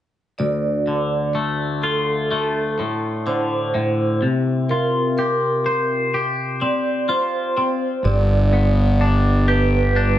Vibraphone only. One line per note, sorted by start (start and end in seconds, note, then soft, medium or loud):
0.39 1.35 D5 medium
1.83 2.79 A4 medium
3.27 4.22 C5 medium
4.69 5.17 A#4 medium
5.18 6.14 A#4 medium
6.61 7.09 D5 medium
7.09 7.56 C5 medium
7.57 8.05 C5 medium
8.05 9.01 D5 medium
9.48 10.19 B4 medium